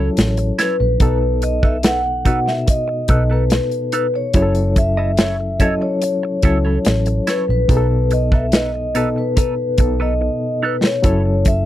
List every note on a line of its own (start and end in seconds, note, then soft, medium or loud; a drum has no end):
0.00 1.02 F#3 medium
0.00 1.02 C#4 medium
0.00 1.02 E4 medium
0.00 1.02 G#4 medium
0.00 1.02 A4 medium
0.00 0.64 C#5 medium
0.17 0.50 A1 medium
0.17 muted clean electric guitar stroke soft
0.17 snare medium
0.17 closed hi-hat medium
0.37 muted clean electric guitar stroke soft
0.37 closed hi-hat soft
0.59 0.75 E4 medium
0.59 0.76 A4 medium
0.59 0.79 B4 medium
0.59 0.76 C#5 medium
0.59 snare soft
0.59 closed hi-hat medium
0.80 0.96 A#1 medium
0.80 1.44 B4 medium
0.80 muted clean electric guitar stroke soft
1.00 2.43 B1 loud
1.00 2.02 B2 medium
1.00 2.03 B3 medium
1.00 1.17 D#4 medium
1.00 2.03 D#4 medium
1.00 1.18 A4 medium
1.00 2.03 A4 medium
1.00 1.18 B4 medium
1.00 kick loud
1.00 closed hi-hat medium
1.21 muted clean electric guitar stroke soft
1.42 1.64 D#5 medium
1.42 muted clean electric guitar stroke soft
1.42 closed hi-hat medium
1.63 1.77 D#4 soft
1.63 1.77 A4 soft
1.63 1.76 B4 soft
1.63 1.86 E5 medium
1.63 kick medium
1.83 2.00 D#4 medium
1.83 2.01 A4 medium
1.83 2.01 B4 medium
1.83 2.49 F#5 medium
1.83 snare loud
1.83 closed hi-hat medium
2.05 muted clean electric guitar stroke soft
2.25 2.93 B2 medium
2.25 2.94 B3 medium
2.25 2.39 D#4 soft
2.25 2.94 D#4 medium
2.25 2.95 F#4 medium
2.25 2.39 A4 soft
2.25 2.39 B4 medium
2.25 kick medium
2.25 closed hi-hat soft
2.46 2.69 E5 medium
2.46 muted clean electric guitar stroke soft
2.46 snare soft
2.67 3.27 D#5 medium
2.67 muted clean electric guitar stroke soft
2.67 kick medium
2.67 closed hi-hat medium
2.88 muted clean electric guitar stroke soft
3.08 3.58 B1 medium
3.08 4.11 B2 medium
3.08 4.11 B3 medium
3.08 3.22 D#4 medium
3.08 4.11 D#4 medium
3.08 3.23 A4 soft
3.08 4.12 A4 medium
3.08 3.23 B4 medium
3.08 kick medium
3.08 closed hi-hat medium
3.30 3.44 D#4 soft
3.30 3.44 A4 medium
3.30 3.43 B4 medium
3.30 3.90 B4 medium
3.50 muted clean electric guitar stroke soft
3.50 snare medium
3.50 closed hi-hat medium
3.71 closed hi-hat soft
3.92 4.06 D#4 soft
3.92 4.06 A4 soft
3.92 4.15 B4 medium
3.92 4.07 B4 medium
3.92 closed hi-hat medium
4.14 4.74 C#5 medium
4.14 muted clean electric guitar stroke soft
4.34 5.77 F#1 loud
4.34 5.36 F#3 medium
4.34 5.37 C#4 medium
4.34 4.51 E4 medium
4.34 5.37 E4 medium
4.34 4.42 G#4 medium
4.34 4.52 A4 medium
4.34 4.52 C#5 medium
4.34 kick loud
4.34 closed hi-hat medium
4.42 5.41 A4 medium
4.55 muted clean electric guitar stroke soft
4.55 closed hi-hat soft
4.76 5.63 E5 medium
4.76 muted clean electric guitar stroke soft
4.76 kick medium
4.76 closed hi-hat medium
4.97 5.11 E4 soft
4.97 5.11 A4 soft
4.97 5.10 D#5 medium
5.17 5.35 E4 medium
5.17 5.36 A4 medium
5.17 5.36 C#5 medium
5.17 snare loud
5.17 closed hi-hat medium
5.40 muted clean electric guitar stroke soft
5.59 6.28 F#3 medium
5.59 6.28 C#4 medium
5.59 5.73 E4 soft
5.59 6.29 E4 medium
5.59 5.74 A4 soft
5.59 6.29 A4 medium
5.59 5.74 C#5 soft
5.59 5.83 D#5 medium
5.59 kick medium
5.59 closed hi-hat medium
5.81 7.32 C#5 medium
5.81 muted clean electric guitar stroke soft
6.02 muted clean electric guitar stroke soft
6.02 closed hi-hat medium
6.23 muted clean electric guitar stroke soft
6.42 6.77 C#2 medium
6.42 7.46 F#3 medium
6.42 7.46 C#4 medium
6.42 6.57 E4 medium
6.42 7.46 E4 medium
6.42 6.57 A4 medium
6.42 7.47 A4 medium
6.42 6.58 C#5 medium
6.42 kick medium
6.42 closed hi-hat medium
6.65 6.79 E4 soft
6.65 6.78 A4 soft
6.65 6.78 C#5 soft
6.85 7.19 A1 medium
6.85 muted clean electric guitar stroke soft
6.85 snare medium
6.85 closed hi-hat medium
7.06 muted clean electric guitar stroke soft
7.06 closed hi-hat soft
7.27 7.44 E4 medium
7.27 7.44 A4 medium
7.27 7.49 B4 medium
7.27 7.45 C#5 medium
7.27 snare soft
7.27 closed hi-hat medium
7.48 7.65 A#1 medium
7.48 8.14 B4 medium
7.48 muted clean electric guitar stroke soft
7.68 9.12 B1 loud
7.68 8.71 B2 medium
7.68 8.71 B3 medium
7.68 7.86 D#4 medium
7.68 8.72 D#4 medium
7.68 7.77 G#4 medium
7.68 7.86 A4 medium
7.68 7.87 B4 medium
7.68 kick loud
7.68 closed hi-hat medium
7.77 8.75 A4 medium
7.90 muted clean electric guitar stroke soft
8.11 8.34 D#5 medium
8.11 muted clean electric guitar stroke soft
8.11 closed hi-hat medium
8.32 8.46 D#4 soft
8.32 8.46 A4 soft
8.32 8.45 B4 soft
8.32 8.55 E5 medium
8.32 kick medium
8.52 8.70 D#4 medium
8.52 8.70 A4 medium
8.52 8.70 B4 medium
8.52 9.18 D#5 medium
8.52 snare loud
8.52 closed hi-hat medium
8.74 muted clean electric guitar stroke soft
8.95 9.63 B2 medium
8.95 9.63 B3 medium
8.95 9.08 D#4 medium
8.95 9.63 D#4 medium
8.95 9.08 A4 medium
8.95 9.64 A4 medium
8.95 9.09 B4 medium
8.95 closed hi-hat medium
9.16 9.38 B4 medium
9.16 muted clean electric guitar stroke soft
9.37 9.53 D#4 medium
9.37 9.54 A4 medium
9.37 9.54 B4 medium
9.37 10.02 B4 medium
9.37 kick medium
9.37 closed hi-hat medium
9.78 10.28 B1 medium
9.78 10.80 B2 medium
9.78 10.81 B3 medium
9.78 10.81 D#4 medium
9.78 10.82 A4 medium
9.78 muted clean electric guitar stroke soft
9.78 kick medium
9.78 closed hi-hat medium
10.00 10.13 D#4 soft
10.00 10.13 A4 soft
10.00 10.13 B4 medium
10.00 10.59 D#5 medium
10.21 muted clean electric guitar stroke soft
10.63 10.75 D#4 soft
10.63 10.76 A4 medium
10.63 10.76 B4 medium
10.63 10.85 B4 medium
10.84 11.43 C#5 medium
10.84 muted clean electric guitar stroke soft
10.84 snare medium
11.02 11.65 F#1 medium
11.02 11.65 F#3 medium
11.02 11.65 C#4 medium
11.02 11.65 E4 medium
11.02 11.21 E4 medium
11.02 11.65 A4 medium
11.02 11.21 A4 medium
11.02 11.22 C#5 medium
11.02 kick loud
11.02 closed hi-hat medium
11.25 muted clean electric guitar stroke soft
11.45 11.65 E5 medium
11.45 muted clean electric guitar stroke soft
11.45 kick medium
11.45 closed hi-hat medium